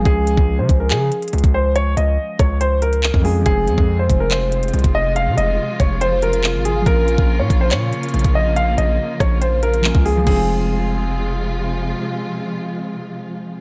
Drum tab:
CC |--------------------------------|--------------------------------|--------------------------------|--------------------------------|
HH |x---x-------x---x---x-xxxxx-----|x---x-------x---x---x-x-----o---|x---x-------x---x---x-xxxxx-----|x---x-------x---x---x-x-----x---|
CP |----------------x---------------|------------------------x-------|----------------x---------------|------------------------x-------|
SD |--------------------------------|------------r-------------------|--------------------------------|--------------------------------|
BD |o-----o-----o-------------o-----|------------o-------------o-----|o-----o-----o-------------o-----|------------o-------------------|

CC |--------------------------------|--------------------------------|x-------------------------------|--------------------------------|
HH |x---x-------x---x---x-xxxxx-----|x---x-------x---x---x-x-----o---|--------------------------------|--------------------------------|
CP |----------------x---------------|------------------------x-------|--------------------------------|--------------------------------|
SD |--------------------------------|------------r-------------------|--------------------------------|--------------------------------|
BD |o-----o-----o-------------o-----|------------o-------------o-----|o-------------------------------|--------------------------------|